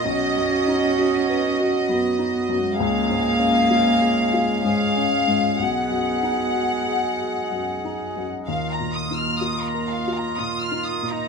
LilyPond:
<<
  \new Staff \with { instrumentName = "Violin section" } { \time 3/4 \key ees \minor \tempo 4 = 63 ees''2. | f''2 f''4 | ges''2~ ges''8. r16 | f''16 bes''16 ees'''16 f'''16 ees'''16 bes''16 f''16 bes''16 ees'''16 f'''16 ees'''16 bes''16 | }
  \new Staff \with { instrumentName = "Viola" } { \time 3/4 \key ees \minor fis'2. | aes'2 aes'4 | aes'2. | f'2. | }
  \new Staff \with { instrumentName = "Harmonium" } { \time 3/4 \key ees \minor << { ees''2. | des''2. | ees''2.~ | ees''2. | } \\ { fis'2. | f'2. | ges'2. | f'2. | } >> }
  \new Staff \with { instrumentName = "Harmonium" } { \clef bass \time 3/4 \key ees \minor fis2. | aes2.~ | aes2. | bes2. | }
  \new Staff \with { instrumentName = "Felt piano" } { \time 3/4 \key ees \minor \tuplet 3/2 { b,,8 fis,8 dis'8 fis'8 b'8 fis'8 fis,8 dis'8 fis,8 } | \tuplet 3/2 { des,8 aes,8 des'8 f'8 aes'8 f'8 aes,8 des'8 aes,8 } | \tuplet 3/2 { ces,8 ges,8 ees'8 ges'8 aes'8 ges'8 ges,8 ees'8 ges,8 } | \tuplet 3/2 { ees,8 bes,8 ees'8 f'8 bes'8 f'8 bes,8 ees'8 bes,8 } | }
  \new Staff \with { instrumentName = "Cello" } { \time 3/4 \key ees \minor des'2 b8. aes16 | bes2 aes4 | ces'2 r4 | bes2 f'8. ees'16 | }
>>